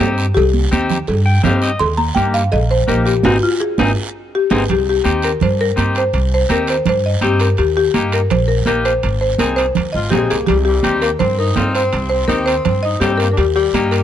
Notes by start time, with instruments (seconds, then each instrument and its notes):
Already playing: marimba G4
0.00 upright bass G2, clean electric guitar C4 D#4 G4, low timbale, short guiro
0.18 short guiro
0.35 upright bass C2, marimba G4, cowbell, long guiro
0.54 high conga
0.71 upright bass D#2, clean electric guitar C4 D#4 G4, high conga, short guiro
0.90 low conga, short guiro
1.07 upright bass G2, cowbell, long guiro
1.26 clean electric guitar G5
1.43 upright bass G2, clean electric guitar C4 D#4 G4 F5, high conga, low conga, low timbale, short guiro
1.62 clean electric guitar D#5, short guiro
1.79 upright bass D#2, marimba C6, cowbell, long guiro
1.97 marimba A#5, high conga
2.15 upright bass G2, clean electric guitar A#3 D#4 G4, marimba G5, high conga, short guiro
2.34 marimba F5, short guiro
2.52 upright bass A#1, marimba D#5, cowbell, long guiro
2.71 marimba C5
2.88 upright bass A#1, clean electric guitar A#3 D#4 G4, marimba A#4, high conga, short guiro
3.06 marimba G4, short guiro
3.23 upright bass G#1, clean electric guitar C4 D#4 G#4, marimba F#4, high conga, high timbale, long guiro
3.43 marimba F4
3.60 marimba G#4
3.78 upright bass G#1, clean electric guitar C4 D#4 G#4, high conga, high timbale, long guiro
4.35 marimba G4
4.50 upright bass G#1, clean electric guitar C4 D#4 G#4, marimba G#4, high conga, high timbale, long guiro
4.69 upright bass C2, marimba G4, high conga, low conga, high timbale, long guiro
4.89 marimba G4
5.04 upright bass D#2, clean electric guitar C4 D#4 G4, high conga, high timbale, short guiro
5.22 marimba A#4, high timbale, short guiro
5.40 upright bass G2, marimba C5, high conga, low conga, high timbale, long guiro
5.61 marimba A#4
5.76 upright bass G2, clean electric guitar C4 D#4 G4, high conga, high timbale, short guiro
5.95 marimba C5, high timbale, short guiro
6.13 upright bass C2, high conga, high timbale, long guiro
6.34 marimba C5
6.49 upright bass D#2, clean electric guitar C4 D#4 G4, marimba A#4, high conga, high timbale, short guiro
6.67 marimba C5, high timbale, short guiro
6.86 upright bass G2, marimba C5, high conga, low conga, high timbale, long guiro
7.06 marimba D#5
7.21 upright bass G2, clean electric guitar C4 D#4 G4, marimba G4, high conga, high timbale, short guiro
7.40 marimba A#4, high timbale, short guiro
7.57 upright bass D#2, marimba G4, high conga, high timbale, long guiro
7.77 marimba G4
7.94 upright bass G2, clean electric guitar A#3 D#4 G4, high conga, high timbale, short guiro
8.12 marimba A#4, high timbale, short guiro
8.30 upright bass A#1, marimba C5, high conga, low conga, high timbale, long guiro
8.48 marimba A#4
8.66 upright bass A#1, clean electric guitar A#3 D#4 G4, marimba A#4, high conga, high timbale, short guiro
8.85 marimba C5, high timbale, short guiro
9.03 upright bass G#1, high conga, high timbale, long guiro
9.21 marimba C5
9.38 upright bass C2, clean electric guitar C4 D#4 G#4, marimba A#4, high conga, high timbale, short guiro
9.56 marimba C5, high timbale, short guiro
9.75 upright bass D#2, high conga, low conga, high timbale, long guiro
9.93 upright bass G#1, tenor saxophone F4, marimba D#5
10.10 upright bass A#1, tenor saxophone G#3, clean electric guitar C4 D#4 G#4, marimba G4, high conga, low conga, high timbale, low timbale, short guiro
10.30 upright bass C2, tenor saxophone A#3, marimba G#4, high timbale, short guiro
10.47 upright bass C2, tenor saxophone G3, marimba G4, high conga, low conga, high timbale, long guiro
10.65 tenor saxophone G3, marimba G4
10.83 upright bass D#2, clean electric guitar C4 D#4 G4, high conga, high timbale, short guiro
11.02 tenor saxophone A#3, marimba A#4, high timbale, short guiro
11.19 upright bass G2, tenor saxophone C4, marimba C5, high conga, low conga, high timbale, long guiro
11.39 tenor saxophone D#4, marimba A#4
11.56 upright bass G2, clean electric guitar C4 D#4 F4, high conga, low conga, high timbale, low timbale, short guiro
11.75 tenor saxophone C4, marimba C5, high timbale, short guiro
11.93 upright bass C2, high conga, high timbale, long guiro
12.09 tenor saxophone C4, marimba C5
12.28 upright bass D#2, clean electric guitar C4 D#4 G4, tenor saxophone D#4, marimba A#4, high conga, high timbale, short guiro
12.46 tenor saxophone C4, marimba C5, high timbale, short guiro
12.65 upright bass G2, tenor saxophone C4, marimba C5, high conga, low conga, high timbale, long guiro
12.83 tenor saxophone D#4, marimba D#5
13.00 upright bass G2, tenor saxophone G3, clean electric guitar C4 D#4 G4, marimba G4, high conga, high timbale, low timbale, short guiro
13.18 tenor saxophone A#3, marimba A#4, high timbale, short guiro
13.32 tenor saxophone D4, marimba A#4
13.37 upright bass D#2, tenor saxophone G3, marimba G4, high conga, high timbale, long guiro
13.56 tenor saxophone G3, marimba G4
13.73 upright bass G2, clean electric guitar A#3 D#4 G4, high conga, high timbale, short guiro
13.91 tenor saxophone A#3, marimba A#4, high timbale, short guiro